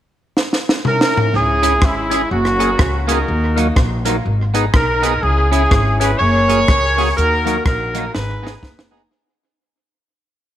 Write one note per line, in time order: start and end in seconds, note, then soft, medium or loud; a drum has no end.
0.37 snare medium
0.53 snare medium
0.69 snare medium
0.85 1.34 C#4 medium
0.85 1.34 E4 medium
0.85 1.32 A#4 loud
0.85 mid tom medium
1.01 snare medium
1.17 floor tom medium
1.34 1.82 C#2 loud
1.34 1.83 C#4 medium
1.34 1.83 E4 medium
1.34 1.83 G#4 loud
1.62 1.72 C#4 medium
1.62 1.74 C#4 medium
1.62 1.72 E4 medium
1.62 1.74 E4 medium
1.62 1.72 G#4 medium
1.62 1.74 G#4 loud
1.62 closed hi-hat medium
1.82 2.23 G#1 medium
1.82 2.29 G#3 medium
1.82 2.28 C#4 medium
1.82 2.32 E4 medium
1.82 kick loud
1.82 cross-stick loud
2.10 2.22 C#4 medium
2.10 2.20 C#4 medium
2.10 2.22 E4 medium
2.10 2.21 E4 medium
2.10 2.21 G#4 medium
2.10 2.22 G#4 loud
2.10 closed hi-hat medium
2.30 2.72 F#1 loud
2.30 3.25 A#3 medium
2.30 3.25 C#4 medium
2.30 3.05 F#4 medium
2.30 muted clean electric guitar stroke soft
2.45 cross-stick medium
2.59 2.70 A#3 medium
2.59 2.69 A#3 medium
2.59 2.69 C#4 medium
2.59 2.71 F#4 medium
2.59 2.71 G#4 medium
2.59 2.70 G#4 medium
2.59 closed hi-hat medium
2.79 3.21 C#2 medium
2.79 kick loud
2.79 cross-stick loud
3.07 3.17 A#3 medium
3.07 3.19 A#3 medium
3.07 3.18 C#4 medium
3.07 4.03 D#4 medium
3.07 3.19 F#4 medium
3.07 4.03 F#4 medium
3.07 3.18 G#4 loud
3.07 3.20 G#4 loud
3.07 3.58 A#4 medium
3.07 closed hi-hat medium
3.28 3.70 D#2 loud
3.56 3.66 F#3 medium
3.56 3.68 A#3 medium
3.56 3.66 A#3 medium
3.56 3.68 D#4 medium
3.56 3.67 D#4 medium
3.56 3.68 F#4 loud
3.56 closed hi-hat medium
3.76 4.18 A#1 loud
3.76 kick loud
3.76 cross-stick loud
4.05 4.15 F#3 medium
4.05 4.17 A#3 medium
4.05 4.15 A#3 medium
4.05 4.17 D#4 medium
4.05 4.16 D#4 medium
4.05 4.17 F#4 loud
4.05 closed hi-hat medium
4.25 4.67 G#1 medium
4.54 4.64 B3 medium
4.54 4.65 B3 medium
4.54 4.64 D#4 medium
4.54 4.66 D#4 medium
4.54 4.64 G#4 medium
4.54 4.66 G#4 medium
4.54 closed hi-hat medium
4.74 5.15 B1 medium
4.74 5.20 D#4 medium
4.74 5.20 A#4 medium
4.74 kick loud
4.74 cross-stick loud
5.02 5.12 B3 medium
5.02 5.14 B3 medium
5.02 5.12 D#4 medium
5.02 5.14 D#4 medium
5.02 5.13 G#4 loud
5.02 5.15 G#4 medium
5.02 closed hi-hat medium
5.22 5.64 C#2 loud
5.22 5.53 C#4 medium
5.22 5.52 E4 medium
5.22 5.51 G#4 medium
5.51 5.61 C#4 medium
5.51 5.63 C#4 medium
5.51 6.17 C#4 medium
5.51 5.61 E4 medium
5.51 5.63 E4 medium
5.51 6.17 E4 medium
5.51 5.62 G#4 loud
5.51 5.97 G#4 medium
5.51 5.63 G#4 loud
5.51 closed hi-hat medium
5.71 6.13 G#1 loud
5.71 kick loud
5.71 cross-stick loud
5.99 6.10 C#4 medium
5.99 6.11 C#4 medium
5.99 6.12 E4 medium
5.99 6.10 E4 medium
5.99 6.10 G#4 medium
5.99 6.12 G#4 medium
5.99 6.19 B4 loud
5.99 closed hi-hat medium
6.19 6.62 F#1 loud
6.19 7.14 G#4 medium
6.19 7.14 A#4 medium
6.19 7.17 C#5 loud
6.48 6.60 A#3 medium
6.48 6.58 A#3 medium
6.48 6.59 C#4 medium
6.48 6.60 F#4 medium
6.48 6.60 G#4 medium
6.48 6.59 G#4 medium
6.48 closed hi-hat medium
6.68 7.10 C#2 medium
6.68 kick loud
6.68 cross-stick loud
6.97 7.07 A#3 medium
6.97 7.09 A#3 medium
6.97 7.07 C#4 medium
6.97 7.09 F#4 medium
6.97 7.07 G#4 medium
6.97 7.09 G#4 loud
6.97 open hi-hat soft
7.17 7.59 D#2 medium
7.17 7.66 D#4 medium
7.17 7.66 F#4 medium
7.17 7.62 A#4 medium
7.17 hi-hat pedal medium
7.45 7.55 F#3 medium
7.45 7.57 A#3 medium
7.45 7.56 A#3 medium
7.45 7.56 D#4 medium
7.45 7.57 D#4 medium
7.45 7.58 F#4 loud
7.45 closed hi-hat medium
7.65 8.07 A#1 medium
7.65 8.12 D#4 medium
7.65 8.12 F#4 medium
7.65 8.11 A#4 medium
7.65 kick loud
7.65 cross-stick loud
7.94 8.04 F#3 medium
7.94 8.05 A#3 medium
7.94 8.04 A#3 medium
7.94 8.06 D#4 medium
7.94 8.05 D#4 medium
7.94 8.06 F#4 loud
7.94 closed hi-hat medium
8.14 8.56 G#1 loud
8.14 9.08 D#4 medium
8.14 9.08 G#4 medium
8.14 8.88 B4 medium
8.14 snare medium
8.42 8.54 B3 medium
8.42 8.53 B3 medium
8.42 8.53 D#4 loud
8.42 8.54 D#4 medium
8.42 8.53 G#4 medium
8.42 8.55 G#4 medium
8.47 snare medium
8.63 9.04 F#1 medium
8.63 kick loud
8.63 snare medium
8.79 snare medium
8.91 9.01 B3 medium
8.91 9.03 B3 medium
8.91 9.01 D#4 medium
8.91 9.03 D#4 medium
8.91 9.01 G#4 loud
8.91 9.03 G#4 medium